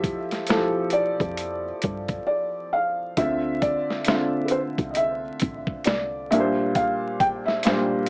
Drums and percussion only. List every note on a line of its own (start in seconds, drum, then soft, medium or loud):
0.04 kick loud
0.04 closed hi-hat medium
0.31 snare soft
0.31 closed hi-hat soft
0.47 snare loud
0.47 closed hi-hat medium
0.90 closed hi-hat medium
1.20 kick loud
1.20 closed hi-hat soft
1.37 closed hi-hat medium
1.82 kick loud
1.82 closed hi-hat medium
2.08 kick medium
2.08 closed hi-hat soft
3.17 kick loud
3.17 closed hi-hat loud
3.62 kick medium
3.62 closed hi-hat medium
3.90 snare soft
4.05 snare loud
4.05 closed hi-hat medium
4.48 closed hi-hat medium
4.78 kick medium
4.78 closed hi-hat soft
4.95 closed hi-hat medium
5.40 kick loud
5.40 closed hi-hat medium
5.67 kick medium
5.84 snare loud
5.84 closed hi-hat medium
6.32 closed hi-hat medium
6.75 kick loud
6.75 closed hi-hat medium
7.20 kick loud
7.20 closed hi-hat medium
7.48 snare soft
7.63 snare loud
7.63 closed hi-hat loud